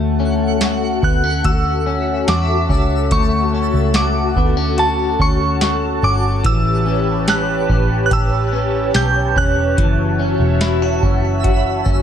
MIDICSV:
0, 0, Header, 1, 7, 480
1, 0, Start_track
1, 0, Key_signature, 2, "major"
1, 0, Tempo, 833333
1, 1793, Time_signature, 4, 2, 24, 8
1, 6925, End_track
2, 0, Start_track
2, 0, Title_t, "Synth bell"
2, 0, Program_c, 0, 98
2, 600, Note_on_c, 0, 90, 75
2, 836, Note_on_c, 0, 88, 80
2, 843, Note_off_c, 0, 90, 0
2, 1319, Note_on_c, 0, 86, 76
2, 1328, Note_off_c, 0, 88, 0
2, 1798, Note_on_c, 0, 85, 84
2, 1810, Note_off_c, 0, 86, 0
2, 2280, Note_on_c, 0, 86, 78
2, 2289, Note_off_c, 0, 85, 0
2, 2760, Note_on_c, 0, 81, 78
2, 2770, Note_off_c, 0, 86, 0
2, 3003, Note_off_c, 0, 81, 0
2, 3004, Note_on_c, 0, 85, 77
2, 3480, Note_on_c, 0, 86, 85
2, 3492, Note_off_c, 0, 85, 0
2, 3721, Note_on_c, 0, 88, 94
2, 3723, Note_off_c, 0, 86, 0
2, 4174, Note_off_c, 0, 88, 0
2, 4202, Note_on_c, 0, 90, 83
2, 4614, Note_off_c, 0, 90, 0
2, 4642, Note_on_c, 0, 90, 71
2, 4677, Note_off_c, 0, 90, 0
2, 4683, Note_on_c, 0, 88, 88
2, 5160, Note_on_c, 0, 91, 92
2, 5172, Note_off_c, 0, 88, 0
2, 5401, Note_on_c, 0, 90, 89
2, 5403, Note_off_c, 0, 91, 0
2, 6334, Note_off_c, 0, 90, 0
2, 6925, End_track
3, 0, Start_track
3, 0, Title_t, "Synth texture"
3, 0, Program_c, 1, 99
3, 0, Note_on_c, 1, 78, 85
3, 835, Note_on_c, 1, 76, 64
3, 983, Note_on_c, 1, 81, 62
3, 1205, Note_off_c, 1, 78, 0
3, 2165, Note_off_c, 1, 76, 0
3, 2299, Note_off_c, 1, 81, 0
3, 3232, Note_on_c, 1, 78, 70
3, 3929, Note_off_c, 1, 78, 0
3, 6117, Note_on_c, 1, 76, 88
3, 6264, Note_on_c, 1, 81, 58
3, 6412, Note_on_c, 1, 83, 63
3, 6925, Note_off_c, 1, 76, 0
3, 6925, Note_off_c, 1, 81, 0
3, 6925, Note_off_c, 1, 83, 0
3, 6925, End_track
4, 0, Start_track
4, 0, Title_t, "Analog synth pad"
4, 0, Program_c, 2, 89
4, 0, Note_on_c, 2, 66, 76
4, 0, Note_on_c, 2, 69, 70
4, 0, Note_on_c, 2, 78, 70
4, 0, Note_on_c, 2, 81, 80
4, 3690, Note_off_c, 2, 66, 0
4, 3691, Note_off_c, 2, 69, 0
4, 3692, Note_off_c, 2, 78, 0
4, 3712, Note_on_c, 2, 71, 72
4, 3713, Note_on_c, 2, 67, 80
4, 3714, Note_on_c, 2, 73, 71
4, 5613, Note_off_c, 2, 67, 0
4, 5613, Note_off_c, 2, 71, 0
4, 5629, Note_on_c, 2, 66, 80
4, 5630, Note_on_c, 2, 76, 72
4, 6925, Note_off_c, 2, 66, 0
4, 6925, Note_off_c, 2, 73, 0
4, 6925, Note_off_c, 2, 76, 0
4, 6925, Note_off_c, 2, 81, 0
4, 6925, End_track
5, 0, Start_track
5, 0, Title_t, "Clean electric guitar"
5, 0, Program_c, 3, 27
5, 0, Note_on_c, 3, 57, 66
5, 0, Note_on_c, 3, 61, 47
5, 0, Note_on_c, 3, 66, 54
5, 111, Note_off_c, 3, 61, 0
5, 114, Note_on_c, 3, 61, 53
5, 350, Note_off_c, 3, 66, 0
5, 352, Note_on_c, 3, 66, 59
5, 591, Note_off_c, 3, 61, 0
5, 593, Note_on_c, 3, 59, 50
5, 712, Note_off_c, 3, 59, 0
5, 712, Note_on_c, 3, 61, 41
5, 826, Note_off_c, 3, 66, 0
5, 833, Note_on_c, 3, 66, 55
5, 1066, Note_off_c, 3, 61, 0
5, 1073, Note_on_c, 3, 61, 53
5, 1307, Note_off_c, 3, 66, 0
5, 1314, Note_on_c, 3, 66, 56
5, 1550, Note_off_c, 3, 61, 0
5, 1553, Note_on_c, 3, 61, 53
5, 1792, Note_off_c, 3, 57, 0
5, 1794, Note_on_c, 3, 57, 68
5, 2032, Note_off_c, 3, 61, 0
5, 2035, Note_on_c, 3, 61, 50
5, 2266, Note_off_c, 3, 66, 0
5, 2273, Note_on_c, 3, 66, 62
5, 2512, Note_off_c, 3, 61, 0
5, 2515, Note_on_c, 3, 59, 54
5, 2632, Note_off_c, 3, 59, 0
5, 2632, Note_on_c, 3, 61, 43
5, 2746, Note_off_c, 3, 66, 0
5, 2753, Note_on_c, 3, 66, 57
5, 2987, Note_off_c, 3, 61, 0
5, 2994, Note_on_c, 3, 61, 53
5, 3226, Note_off_c, 3, 66, 0
5, 3233, Note_on_c, 3, 66, 58
5, 3473, Note_off_c, 3, 61, 0
5, 3475, Note_on_c, 3, 61, 50
5, 3713, Note_on_c, 3, 52, 73
5, 3761, Note_off_c, 3, 66, 0
5, 3810, Note_off_c, 3, 57, 0
5, 3950, Note_off_c, 3, 61, 0
5, 3952, Note_on_c, 3, 61, 55
5, 4191, Note_on_c, 3, 67, 58
5, 4430, Note_off_c, 3, 61, 0
5, 4432, Note_on_c, 3, 61, 53
5, 4664, Note_off_c, 3, 67, 0
5, 4671, Note_on_c, 3, 67, 59
5, 4909, Note_off_c, 3, 61, 0
5, 4912, Note_on_c, 3, 61, 54
5, 5144, Note_off_c, 3, 67, 0
5, 5151, Note_on_c, 3, 67, 59
5, 5389, Note_off_c, 3, 61, 0
5, 5392, Note_on_c, 3, 61, 54
5, 5630, Note_off_c, 3, 52, 0
5, 5632, Note_on_c, 3, 52, 70
5, 5680, Note_off_c, 3, 67, 0
5, 5870, Note_off_c, 3, 61, 0
5, 5872, Note_on_c, 3, 61, 56
5, 6112, Note_on_c, 3, 64, 58
5, 6233, Note_off_c, 3, 64, 0
5, 6233, Note_on_c, 3, 66, 53
5, 6344, Note_off_c, 3, 61, 0
5, 6351, Note_on_c, 3, 61, 54
5, 6581, Note_off_c, 3, 66, 0
5, 6588, Note_on_c, 3, 66, 54
5, 6823, Note_off_c, 3, 61, 0
5, 6830, Note_on_c, 3, 61, 52
5, 6925, Note_off_c, 3, 52, 0
5, 6925, Note_off_c, 3, 61, 0
5, 6925, Note_off_c, 3, 66, 0
5, 6925, End_track
6, 0, Start_track
6, 0, Title_t, "Picked electric bass"
6, 0, Program_c, 4, 34
6, 0, Note_on_c, 4, 38, 92
6, 569, Note_off_c, 4, 38, 0
6, 592, Note_on_c, 4, 38, 82
6, 820, Note_off_c, 4, 38, 0
6, 833, Note_on_c, 4, 38, 80
6, 1290, Note_off_c, 4, 38, 0
6, 1313, Note_on_c, 4, 40, 73
6, 1540, Note_off_c, 4, 40, 0
6, 1551, Note_on_c, 4, 37, 83
6, 1780, Note_off_c, 4, 37, 0
6, 1792, Note_on_c, 4, 38, 84
6, 2134, Note_off_c, 4, 38, 0
6, 2151, Note_on_c, 4, 37, 78
6, 2494, Note_off_c, 4, 37, 0
6, 2511, Note_on_c, 4, 38, 84
6, 2969, Note_off_c, 4, 38, 0
6, 2992, Note_on_c, 4, 38, 85
6, 3449, Note_off_c, 4, 38, 0
6, 3471, Note_on_c, 4, 31, 84
6, 3700, Note_off_c, 4, 31, 0
6, 3712, Note_on_c, 4, 33, 97
6, 4409, Note_off_c, 4, 33, 0
6, 4431, Note_on_c, 4, 33, 82
6, 4660, Note_off_c, 4, 33, 0
6, 4672, Note_on_c, 4, 33, 91
6, 5129, Note_off_c, 4, 33, 0
6, 5152, Note_on_c, 4, 35, 79
6, 5380, Note_off_c, 4, 35, 0
6, 5390, Note_on_c, 4, 28, 81
6, 5619, Note_off_c, 4, 28, 0
6, 5632, Note_on_c, 4, 30, 95
6, 5974, Note_off_c, 4, 30, 0
6, 5989, Note_on_c, 4, 28, 82
6, 6332, Note_off_c, 4, 28, 0
6, 6351, Note_on_c, 4, 30, 80
6, 6809, Note_off_c, 4, 30, 0
6, 6831, Note_on_c, 4, 30, 87
6, 6925, Note_off_c, 4, 30, 0
6, 6925, End_track
7, 0, Start_track
7, 0, Title_t, "Drums"
7, 351, Note_on_c, 9, 38, 92
7, 351, Note_on_c, 9, 42, 58
7, 408, Note_off_c, 9, 42, 0
7, 409, Note_off_c, 9, 38, 0
7, 592, Note_on_c, 9, 36, 79
7, 649, Note_off_c, 9, 36, 0
7, 832, Note_on_c, 9, 36, 76
7, 832, Note_on_c, 9, 42, 58
7, 890, Note_off_c, 9, 36, 0
7, 890, Note_off_c, 9, 42, 0
7, 1312, Note_on_c, 9, 38, 88
7, 1314, Note_on_c, 9, 42, 65
7, 1370, Note_off_c, 9, 38, 0
7, 1372, Note_off_c, 9, 42, 0
7, 1551, Note_on_c, 9, 36, 74
7, 1609, Note_off_c, 9, 36, 0
7, 1791, Note_on_c, 9, 42, 68
7, 1792, Note_on_c, 9, 36, 91
7, 1849, Note_off_c, 9, 42, 0
7, 1850, Note_off_c, 9, 36, 0
7, 2270, Note_on_c, 9, 42, 62
7, 2271, Note_on_c, 9, 38, 97
7, 2327, Note_off_c, 9, 42, 0
7, 2328, Note_off_c, 9, 38, 0
7, 2512, Note_on_c, 9, 36, 78
7, 2569, Note_off_c, 9, 36, 0
7, 2753, Note_on_c, 9, 42, 56
7, 2810, Note_off_c, 9, 42, 0
7, 2992, Note_on_c, 9, 36, 77
7, 3050, Note_off_c, 9, 36, 0
7, 3233, Note_on_c, 9, 38, 88
7, 3235, Note_on_c, 9, 42, 68
7, 3290, Note_off_c, 9, 38, 0
7, 3292, Note_off_c, 9, 42, 0
7, 3712, Note_on_c, 9, 36, 97
7, 3712, Note_on_c, 9, 42, 72
7, 3770, Note_off_c, 9, 36, 0
7, 3770, Note_off_c, 9, 42, 0
7, 4191, Note_on_c, 9, 42, 63
7, 4192, Note_on_c, 9, 38, 97
7, 4249, Note_off_c, 9, 42, 0
7, 4250, Note_off_c, 9, 38, 0
7, 4432, Note_on_c, 9, 36, 77
7, 4489, Note_off_c, 9, 36, 0
7, 4672, Note_on_c, 9, 36, 81
7, 4673, Note_on_c, 9, 42, 57
7, 4730, Note_off_c, 9, 36, 0
7, 4730, Note_off_c, 9, 42, 0
7, 5151, Note_on_c, 9, 38, 92
7, 5153, Note_on_c, 9, 42, 67
7, 5209, Note_off_c, 9, 38, 0
7, 5211, Note_off_c, 9, 42, 0
7, 5391, Note_on_c, 9, 36, 75
7, 5449, Note_off_c, 9, 36, 0
7, 5632, Note_on_c, 9, 36, 98
7, 5634, Note_on_c, 9, 42, 66
7, 5690, Note_off_c, 9, 36, 0
7, 5691, Note_off_c, 9, 42, 0
7, 6110, Note_on_c, 9, 42, 60
7, 6111, Note_on_c, 9, 38, 97
7, 6168, Note_off_c, 9, 42, 0
7, 6169, Note_off_c, 9, 38, 0
7, 6351, Note_on_c, 9, 36, 79
7, 6409, Note_off_c, 9, 36, 0
7, 6591, Note_on_c, 9, 42, 59
7, 6592, Note_on_c, 9, 36, 75
7, 6649, Note_off_c, 9, 36, 0
7, 6649, Note_off_c, 9, 42, 0
7, 6830, Note_on_c, 9, 36, 81
7, 6888, Note_off_c, 9, 36, 0
7, 6925, End_track
0, 0, End_of_file